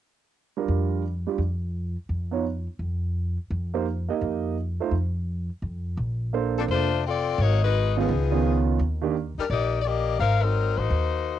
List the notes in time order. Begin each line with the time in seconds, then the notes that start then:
0.57 G3 D4 F4 A#4
0.68 F2
1.27 G3 D4 F4 G4
1.38 F2
2.09 F2
2.31 B3 D#4 F4 C#5
2.79 F2
3.50 F2
3.74 A#3 D#4 G4 C5
4.08 A#3 D#4 G4 D#5
4.21 F2
4.80 A3 D#4 F4 C5
4.91 F2
5.62 F2
5.97 A#1
6.33 A#3 D4 A4 C5
6.57 F3 C4 D4 A4
6.68 F1 A3 D4 F4 C5
7.06 C4 F4 A4 D5
7.38 G#1 A#3 D#4 F#4 C#5
7.63 G#3 D#4 F#4 B4
7.97 D#3 F3 B3 C#4 D#4 F4 G#4
8.09 C#2
8.31 D#3 B3 C#4 F4
8.79 D#2
9.01 D#3 A#3 D4 G4
9.38 G3 D4 D#4 A#4, muted upright bass stroke
9.50 A#1 A#3 D#4 G4 D5
9.81 G4 D5 D#5
9.85 A#3
10.19 G#1 D#4 A#4 C5 F5
10.43 F#3 C4 D#4 A#4
10.77 A1 A#3 D#4 F#4 C5
10.90 D#2